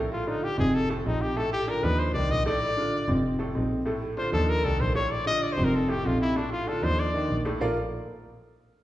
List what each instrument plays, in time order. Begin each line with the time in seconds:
Already playing: double bass A#1, upright piano A2 A3 A4
0.13 trumpet F4
0.27 upright piano D3 D4 F4, trumpet D#4
0.44 trumpet G4
0.58 double bass F1, upright piano C3 C4 D#4, trumpet G#4
0.75 trumpet A4
0.90 upright piano A2 A3 A4, trumpet C4
1.05 double bass A#1, upright piano C3 C4 D#4, trumpet D#4
1.22 trumpet G4
1.36 upright piano A2 A3 A4, trumpet A4
1.53 trumpet G4
1.67 upright piano D3 D4 F4, trumpet A#4
1.83 double bass D#2, upright piano F3 D4 D#4, trumpet B4
1.99 trumpet C5
2.14 double bass C2, upright piano D#3 D4 D#4, trumpet D5
2.30 double bass A#1, trumpet D#5
2.46 upright piano A2 A3 A4, trumpet D5
2.77 upright piano D3 D4 F4
3.08 double bass F1, upright piano C3 C4 D#4
3.39 upright piano A2 A3 A4
3.54 double bass A#1, upright piano C3 C4 D#4
3.86 upright piano A2 A3 A4
4.17 upright piano D3 D4 F4, trumpet C5
4.33 double bass D#2, upright piano F3 D4 D#4, trumpet A4
4.50 trumpet A#4
4.64 double bass C2, upright piano D#3 D4 D#4, trumpet A4
4.80 double bass A#1, trumpet C5
4.95 upright piano A2 A3 A4, trumpet C#5
5.12 trumpet D5
5.26 upright piano D3 D4 F4, trumpet D#5
5.43 trumpet D5
5.53 trumpet C5
5.58 double bass F1, upright piano C3 C4 D#4
5.65 trumpet A#4
5.75 trumpet A4
5.89 upright piano A2 A3 A4, trumpet G4
6.04 double bass A#1, upright piano C3 C4 D#4, trumpet F4
6.21 trumpet E4
6.36 upright piano A2 A3 A4, trumpet D4
6.52 trumpet F4
6.67 upright piano D3 D4 F4, trumpet A4
6.82 double bass D#2, upright piano F3 D4 D#4, trumpet C5
7.00 trumpet D5
7.14 upright piano D#3 D4 D#4
7.29 double bass A#1
7.45 upright piano A2 A3 A4
7.60 double bass A#1, upright piano A#3 F4 A4 A#4 D5 F5